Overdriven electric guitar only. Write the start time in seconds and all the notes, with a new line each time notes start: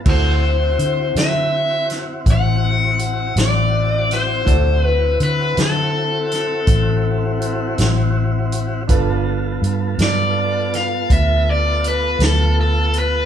0.09 C5
1.18 E5
2.32 F#5
3.39 D5
4.13 C5
4.82 B4
5.23 B4
5.61 A4
10.02 D5
10.75 F5
11.12 E5
11.50 D5
11.88 B4
12.24 A4
12.61 A4
12.98 B4